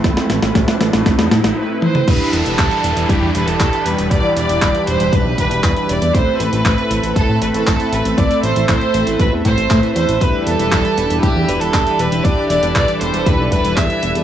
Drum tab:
CC |----------------|x---------------|----------------|----------------|
HH |xxxxxxxxx-xx----|x-xxxxxxx-xxxxxx|x-xxxxxxx-xxxxxx|x-xxxxxxx-xxxxxx|
CP |----------------|----x-------x---|----x-------x---|----x-------x---|
SD |oooooooooooo----|----------------|----------------|----------------|
T1 |--------------o-|----------------|----------------|----------------|
T2 |---------------o|----------------|----------------|----------------|
BD |o---o---o-------|o---o---o---o---|o---o---o-o-o---|o---o---o---o---|

CC |----------------|----------------|----------------|
HH |xxxxxxxxx-xxxxxx|x-xxxxxxx-xxxxxx|x-xxxxxxx-xxxxxx|
CP |----x-------x---|----x-------x---|----x-------x---|
SD |----------------|----------------|----------------|
T1 |----------------|----------------|----------------|
T2 |----------------|----------------|----------------|
BD |o---o---o-o-o---|o---o---o---o---|o---o---o-o-o---|